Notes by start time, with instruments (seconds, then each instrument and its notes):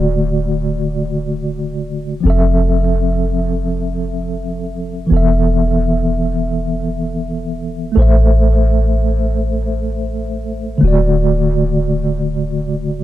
Already playing: 808-style bass D1, tine electric piano D3 A3 F#4 D5
2.20 tine electric piano F3 C4
2.25 808-style bass F1, tine electric piano A4
2.30 tine electric piano E5
5.07 tine electric piano E3 B3
5.11 808-style bass E1, tine electric piano A4
5.17 tine electric piano E5
7.92 tine electric piano A3 A4
7.97 808-style bass A1, tine electric piano C5
8.02 tine electric piano E5
10.78 tine electric piano D3 A3
10.83 808-style bass D1, tine electric piano F#4
10.88 tine electric piano D5